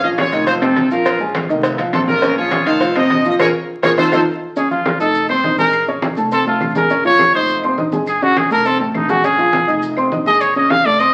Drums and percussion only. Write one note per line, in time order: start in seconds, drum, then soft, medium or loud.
0.03 high conga soft
0.03 maracas soft
0.17 cowbell medium
0.17 high conga loud
0.17 claves medium
0.17 maracas soft
0.32 cowbell medium
0.32 high conga soft
0.32 maracas medium
0.47 cowbell loud
0.47 high conga soft
0.47 maracas loud
0.62 cowbell medium
0.62 high conga soft
0.62 claves medium
0.62 maracas soft
0.76 cowbell medium
0.76 high conga medium
0.76 maracas soft
0.91 maracas medium
1.05 cowbell loud
1.05 high conga soft
1.05 claves medium
1.05 maracas medium
1.20 high conga soft
1.20 maracas soft
1.35 cowbell medium
1.35 high conga loud
1.35 claves medium
1.35 maracas soft
1.49 high conga soft
1.49 maracas medium
1.63 cowbell loud
1.63 high conga soft
1.63 maracas loud
1.78 cowbell medium
1.78 high conga soft
1.78 maracas soft
1.93 cowbell medium
1.93 high conga medium
1.93 claves medium
1.93 maracas soft
2.08 high conga medium
2.08 maracas medium
2.22 cowbell loud
2.22 high conga soft
2.22 maracas medium
2.37 high conga soft
2.37 maracas soft
2.51 cowbell medium
2.51 high conga loud
2.51 claves medium
2.51 maracas soft
2.66 cowbell medium
2.66 high conga soft
2.66 maracas medium
2.81 cowbell loud
2.81 high conga soft
2.81 maracas loud
2.96 cowbell medium
2.96 high conga soft
2.96 claves medium
2.96 maracas soft
3.10 cowbell medium
3.10 high conga medium
3.10 maracas soft
3.25 maracas medium
3.39 cowbell loud
3.39 high conga loud
3.39 claves loud
3.39 maracas loud
3.83 cowbell loud
3.83 high conga loud
3.83 claves medium
3.83 maracas loud
3.98 cowbell loud
3.98 high conga medium
3.98 claves loud
3.98 maracas loud
4.12 cowbell loud
4.12 high conga loud
4.12 claves loud
4.12 maracas loud
4.56 high conga soft
4.56 maracas loud
4.71 high conga soft
4.71 maracas soft
4.85 high conga loud
4.85 claves medium
4.85 maracas soft
5.00 high conga soft
5.00 maracas medium
5.15 high conga soft
5.15 maracas medium
5.29 high conga soft
5.29 claves medium
5.29 maracas soft
5.44 high conga medium
5.44 maracas soft
5.58 high conga medium
5.58 maracas medium
5.73 high conga soft
5.73 claves medium
5.73 maracas medium
5.88 high conga soft
5.88 maracas soft
6.02 high conga loud
6.02 claves medium
6.02 maracas soft
6.17 high conga soft
6.17 maracas medium
6.31 high conga soft
6.31 maracas loud
6.46 high conga soft
6.46 maracas soft
6.60 high conga medium
6.60 claves medium
6.60 maracas soft
6.75 high conga medium
6.75 maracas medium
6.90 high conga soft
6.90 maracas loud
7.04 high conga soft
7.04 maracas soft
7.19 high conga loud
7.19 claves medium
7.19 maracas soft
7.34 high conga soft
7.34 maracas medium
7.49 high conga soft
7.49 maracas medium
7.63 high conga soft
7.63 claves medium
7.63 maracas soft
7.78 high conga medium
7.78 maracas soft
7.92 high conga medium
7.92 maracas medium
8.07 high conga soft
8.07 claves medium
8.07 maracas loud
8.22 high conga soft
8.22 maracas soft
8.36 high conga medium
8.36 claves medium
8.36 maracas soft
8.51 high conga soft
8.51 maracas medium
8.65 high conga soft
8.65 maracas loud
8.80 high conga soft
8.80 maracas soft
8.94 high conga medium
8.94 claves medium
8.94 maracas soft
9.09 high conga medium
9.09 maracas medium
9.24 high conga soft
9.24 maracas loud
9.38 high conga soft
9.38 maracas soft
9.53 high conga loud
9.53 claves medium
9.53 maracas soft
9.68 high conga soft
9.68 maracas medium
9.82 high conga soft
9.82 maracas loud
9.97 high conga soft
9.97 claves medium
9.97 maracas soft
10.12 high conga medium
10.12 maracas soft
10.26 maracas medium
10.40 high conga soft
10.40 claves medium
10.40 maracas loud
10.55 high conga soft
10.55 maracas soft
10.70 high conga loud
10.70 claves medium
10.70 maracas soft
10.85 high conga soft
10.85 maracas medium
11.00 high conga soft
11.00 maracas loud